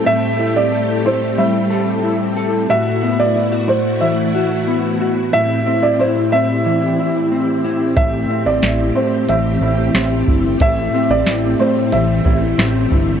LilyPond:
<<
  \new Staff \with { instrumentName = "Felt piano" } { \time 4/4 \key a \dorian \tempo 4 = 91 e''8. d''8. c''8 e''4. r8 | e''8. d''8. c''8 e''4. r8 | e''8. d''16 c''8 e''2 r8 | e''8. d''8. c''8 e''4. r8 |
e''8. d''8. c''8 e''4. r8 | }
  \new Staff \with { instrumentName = "Clean electric guitar" } { \time 4/4 \key a \dorian <a, g e' a'>8 e'8 a'8 e'8 g8 a'8 e'8 a'8 | <a, fis'>8 b8 e'16 fis'8. e8 fis'8 b8 fis'8 | <a, e'>8 c'8 e'8 c'8 e8 e'8 c'8 e'8 | <a, e'>8 c'8 e'8 c'8 e8 e'8 c'8 e'8 |
<a, e'>8 c'8 e'8 c'8 e8 e'8 c'8 e'8 | }
  \new Staff \with { instrumentName = "String machine" } { \time 4/4 \key a \dorian << { g'1 | r1 | g'1~ | g'1~ |
g'1 | } \\ { <a c'>1 | <a e' fis'>1 | <a, c' e'>1 | a1~ |
a1 | } >> }
  \new Staff \with { instrumentName = "Analog synth bass" } { \clef bass \time 4/4 \key a \dorian r1 | r1 | r1 | a,,8 r16 a,,16 a,,8 a,8 a,,8 a,,8 a,,8 g,,8 |
a,,8 r16 a,,16 a,,8 a,8 a,,8 a,,8 a,,8 g,,8 | }
  \new DrumStaff \with { instrumentName = "Drums" } \drummode { \time 4/4 r4 r4 r4 r4 | r4 r4 r4 r4 | r4 r4 r4 r4 | <hh bd>4 <hh sn tamb>4 hh4 <hh sn tamb>8 bd8 |
<hh bd>4 <hh sn tamb>4 hh8 bd8 <hh sn tamb>8 bd8 | }
>>